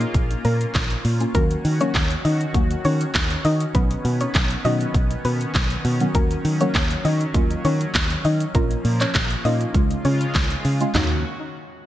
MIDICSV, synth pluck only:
0, 0, Header, 1, 2, 480
1, 0, Start_track
1, 0, Key_signature, -6, "minor"
1, 0, Tempo, 600000
1, 1078, Time_signature, 4, 2, 24, 8
1, 9488, End_track
2, 0, Start_track
2, 0, Title_t, "Synth pluck"
2, 0, Program_c, 0, 84
2, 0, Note_on_c, 0, 63, 65
2, 0, Note_on_c, 0, 75, 83
2, 223, Note_off_c, 0, 75, 0
2, 226, Note_off_c, 0, 63, 0
2, 358, Note_on_c, 0, 70, 90
2, 364, Note_on_c, 0, 58, 67
2, 468, Note_off_c, 0, 70, 0
2, 471, Note_off_c, 0, 58, 0
2, 1078, Note_on_c, 0, 70, 110
2, 1084, Note_on_c, 0, 58, 84
2, 1285, Note_off_c, 0, 70, 0
2, 1289, Note_off_c, 0, 58, 0
2, 1445, Note_on_c, 0, 73, 96
2, 1452, Note_on_c, 0, 61, 71
2, 1543, Note_off_c, 0, 73, 0
2, 1547, Note_off_c, 0, 61, 0
2, 1798, Note_on_c, 0, 75, 80
2, 1804, Note_on_c, 0, 63, 63
2, 2143, Note_off_c, 0, 75, 0
2, 2147, Note_off_c, 0, 63, 0
2, 2278, Note_on_c, 0, 73, 89
2, 2285, Note_on_c, 0, 61, 69
2, 2388, Note_off_c, 0, 73, 0
2, 2392, Note_off_c, 0, 61, 0
2, 2759, Note_on_c, 0, 75, 88
2, 2765, Note_on_c, 0, 63, 69
2, 2869, Note_off_c, 0, 75, 0
2, 2872, Note_off_c, 0, 63, 0
2, 2998, Note_on_c, 0, 71, 113
2, 3005, Note_on_c, 0, 59, 82
2, 3206, Note_off_c, 0, 71, 0
2, 3210, Note_off_c, 0, 59, 0
2, 3366, Note_on_c, 0, 73, 82
2, 3372, Note_on_c, 0, 61, 62
2, 3463, Note_off_c, 0, 73, 0
2, 3467, Note_off_c, 0, 61, 0
2, 3718, Note_on_c, 0, 75, 85
2, 3725, Note_on_c, 0, 63, 62
2, 4063, Note_off_c, 0, 75, 0
2, 4067, Note_off_c, 0, 63, 0
2, 4198, Note_on_c, 0, 71, 88
2, 4205, Note_on_c, 0, 59, 68
2, 4308, Note_off_c, 0, 71, 0
2, 4312, Note_off_c, 0, 59, 0
2, 4918, Note_on_c, 0, 70, 106
2, 4925, Note_on_c, 0, 58, 81
2, 5126, Note_off_c, 0, 70, 0
2, 5130, Note_off_c, 0, 58, 0
2, 5285, Note_on_c, 0, 73, 93
2, 5292, Note_on_c, 0, 61, 73
2, 5383, Note_off_c, 0, 73, 0
2, 5387, Note_off_c, 0, 61, 0
2, 5639, Note_on_c, 0, 75, 82
2, 5645, Note_on_c, 0, 63, 64
2, 5984, Note_off_c, 0, 75, 0
2, 5987, Note_off_c, 0, 63, 0
2, 6119, Note_on_c, 0, 73, 86
2, 6125, Note_on_c, 0, 61, 68
2, 6228, Note_off_c, 0, 73, 0
2, 6232, Note_off_c, 0, 61, 0
2, 6599, Note_on_c, 0, 75, 90
2, 6605, Note_on_c, 0, 63, 69
2, 6709, Note_off_c, 0, 75, 0
2, 6712, Note_off_c, 0, 63, 0
2, 6838, Note_on_c, 0, 70, 110
2, 6845, Note_on_c, 0, 58, 87
2, 7046, Note_off_c, 0, 70, 0
2, 7050, Note_off_c, 0, 58, 0
2, 7206, Note_on_c, 0, 73, 80
2, 7213, Note_on_c, 0, 61, 63
2, 7304, Note_off_c, 0, 73, 0
2, 7307, Note_off_c, 0, 61, 0
2, 7559, Note_on_c, 0, 75, 83
2, 7566, Note_on_c, 0, 63, 64
2, 7904, Note_off_c, 0, 75, 0
2, 7907, Note_off_c, 0, 63, 0
2, 8039, Note_on_c, 0, 73, 89
2, 8045, Note_on_c, 0, 61, 69
2, 8149, Note_off_c, 0, 73, 0
2, 8152, Note_off_c, 0, 61, 0
2, 8758, Note_on_c, 0, 63, 93
2, 8981, Note_off_c, 0, 63, 0
2, 9488, End_track
0, 0, End_of_file